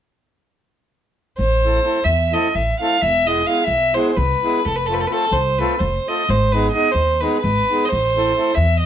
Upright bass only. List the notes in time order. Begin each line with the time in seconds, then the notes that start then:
1.39 A1
2.05 E2
2.55 A1
3.02 E1
3.67 B1
4.17 C2
4.66 F1
5.32 C2
5.80 F1
6.29 G#1
6.95 D#2
7.44 G#1
7.92 A1
8.57 E2